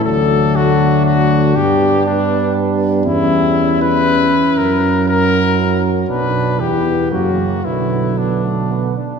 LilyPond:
<<
  \new Staff \with { instrumentName = "Trumpet" } { \time 3/4 \key b \minor \tempo 4 = 119 a'4 fis'4 fis'4 | g'4 d'4 r4 | e'4. b'4. | ais'4 ais'4. r8 |
b'4 g'4 fis'4 | e'4 d'4. r8 | }
  \new Staff \with { instrumentName = "Flugelhorn" } { \time 3/4 \key b \minor d'2.~ | d'2. | e'2.~ | e'2~ e'8 r8 |
d'4 b4 ais4 | b4 b8 a8 b8 d'8 | }
  \new Staff \with { instrumentName = "French horn" } { \time 3/4 \key b \minor a2. | b2. | cis'2.~ | cis'2~ cis'8 r8 |
b2 fis4~ | fis2~ fis8 r8 | }
  \new Staff \with { instrumentName = "Trombone" } { \clef bass \time 3/4 \key b \minor fis2. | g2.~ | g2~ g8 r8 | fis2.~ |
fis4 e4 cis4 | d2~ d8 r8 | }
  \new Staff \with { instrumentName = "Tuba" } { \clef bass \time 3/4 \key b \minor d,2. | g,2. | e,2~ e,8 r8 | fis,2. |
b,,4 e,4 fis,4 | b,,2~ b,,8 r8 | }
>>